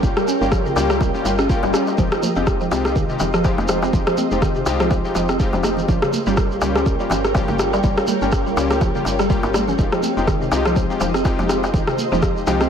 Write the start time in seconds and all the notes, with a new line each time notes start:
Already playing: F4 A#4 G5
0.03 G1 G3 A#3 C#4 F4 G4 D#5, kick, shekere
0.17 G3, cross-stick, shekere
0.28 C#4, shekere
0.41 G1 G3 A#3 C#4 F4 G4, shekere
0.52 F3, kick, cross-stick, shekere
0.66 C#3, shekere
0.76 C#2 G3 A#3 C#4 F4 G4, darbuka ka, darbuka tek, shekere
0.90 G3, cross-stick, shekere
1.01 G3, kick, swell, darbuka tek, shekere
1.14 G3 A#3 C#4 F4 G4, shekere
1.25 G1 G3, darbuka tek, shekere
1.38 C#4, cross-stick, shekere
1.49 G3 A#3 C#4 F4 G4, kick, shekere
1.63 G1 G3, darbuka ka, darbuka tek, shekere
1.74 C#4, cross-stick, darbuka ka, shekere
1.87 darbuka tek, shekere
1.98 F1 F3 G#3 C4 D#4 F4 G4 C5, kick, muted conga, low conga, shekere
2.12 cross-stick, shekere
2.23 F3, high conga, shekere
2.35 F1 G#3 C4 D#4 F4 G4, shekere
2.47 kick, cross-stick, muted conga, shekere
2.60 F3, shekere
2.71 C2 G#3 C4 D#4 F4 G4, darbuka tek, shekere
2.85 cross-stick, muted conga, shekere
2.96 D#3, kick, shekere
3.09 C3 G#3 C4 D#4 F4 G4, shekere
3.20 F1, muted conga, darbuka ka, darbuka tek, low conga, shekere
3.34 F3, cross-stick, shekere
3.44 F3 G#3 C4 D#4 F4 G4, kick, darbuka tek, shekere
3.58 F1, muted conga, darbuka tek, high conga, shekere
3.68 F3, cross-stick, darbuka tek, shekere
3.82 C4, darbuka ka, shekere
3.93 F1 G#3 C4 D#4 F4 G4, kick, muted conga, low conga, shekere
4.07 F3, cross-stick, shekere
4.17 C4, high conga, shekere
4.31 F1 G#3 C4 D#4 F4 G4, high conga, shekere
4.42 D#3, kick, cross-stick, muted conga, shekere
4.55 C3, shekere
4.66 C2 G#3 C4 D#4 F4 G4, darbuka tek, shekere
4.80 F3, cross-stick, muted conga, high conga, shekere
4.91 F3, kick, darbuka tek, shekere
5.05 G#3 C4 D#4 F4 G4, shekere
5.15 F1 F3, muted conga, darbuka tek, shekere
5.29 C4, cross-stick, shekere
5.40 G#3 C4 D#4 F4 G4, kick, shekere
5.53 F1 F3, muted conga, darbuka ka, darbuka tek, shekere
5.63 C4, cross-stick, darbuka ka, high conga, shekere
5.77 low conga, shekere
5.88 G1 F3 G3 A#3 C#4 F4 G4 A#4 C#5 G5, kick, muted conga, low conga, shekere
6.02 C#3, cross-stick, shekere
6.13 high conga, shekere
6.26 G1 G3 A#3 C#4 F4 G4, shekere
6.37 G3, kick, cross-stick, muted conga, shekere
6.51 shekere
6.62 C#2 G3 A#3 C#4 F4 G4, darbuka tek, shekere
6.75 C#4, cross-stick, muted conga, shekere
6.86 kick, shekere
7.00 G3 A#3 C#4 F4 G4, shekere
7.10 G1 C#4, darbuka ka, muted conga, darbuka tek, low conga, shekere
7.25 cross-stick, shekere
7.35 F3 G3 A#3 C#4 F4 G4, kick, darbuka tek, shekere
7.48 G1 C#3, muted conga, darbuka tek, high conga, shekere
7.59 cross-stick, darbuka tek, shekere
7.73 G3, darbuka ka, shekere
7.83 G1 G3 A#3 C#4 F4 G4, kick, muted conga, low conga, shekere
7.97 cross-stick, shekere
8.07 G3, high conga, shekere
8.21 G1 G3 A#3 C#4 F4 G4, high conga, shekere
8.32 kick, cross-stick, shekere
8.46 G3, shekere
8.57 C#2 G3 A#3 C#4 F4 G4, darbuka ka, darbuka tek, shekere
8.70 cross-stick, muted conga, high conga, shekere
8.81 F3, kick, darbuka tek, shekere
8.95 C#3 G3 A#3 C#4 F4 G4, shekere
9.05 G1, muted conga, darbuka tek, shekere
9.19 G3, cross-stick, shekere
9.30 G3 A#3 C#4 F4 G4, kick, shekere
9.43 G1 G3 A#3 C#4 F4 G4, darbuka ka, muted conga, darbuka tek, shekere
9.54 G3, cross-stick, darbuka ka, high conga, shekere
9.68 C#4, low conga, shekere
9.79 F1 G#3 C4 D#4 F4 G4 C5 D#5, kick, muted conga, low conga, shekere
9.92 F3, cross-stick, shekere
10.03 C4, high conga, shekere
10.17 F1 G#3 C4 D#4 F4 G4, shekere
10.27 D#3, kick, cross-stick, muted conga, shekere
10.41 C3, shekere
10.52 C2 G#3 C4 D#4 F4 G4, darbuka tek, shekere
10.65 F3, cross-stick, muted conga, shekere
10.76 F3, kick, shekere
10.90 G#3 C4 D#4 F4 G4, shekere
11.00 F1 F3, darbuka ka, muted conga, darbuka tek, low conga, shekere
11.14 C4, cross-stick, shekere
11.25 G#3 C4 D#4 F4 G4, kick, darbuka tek, shekere
11.39 F1 F3, muted conga, darbuka tek, high conga, shekere
11.49 C4, cross-stick, darbuka tek, shekere
11.64 darbuka ka, shekere
11.73 F1 D#3 G#3 C4 D#4 F4 G4, kick, muted conga, low conga, shekere
11.87 C3, cross-stick, shekere
11.98 high conga, shekere
12.12 F1 F3 G#3 C4 D#4 F4 G4, high conga, shekere
12.22 F3, kick, cross-stick, muted conga, shekere
12.37 shekere
12.47 C2 F3 G#3 C4 D#4 F4 G4, darbuka tek, shekere
12.61 C4, cross-stick, muted conga, high conga, shekere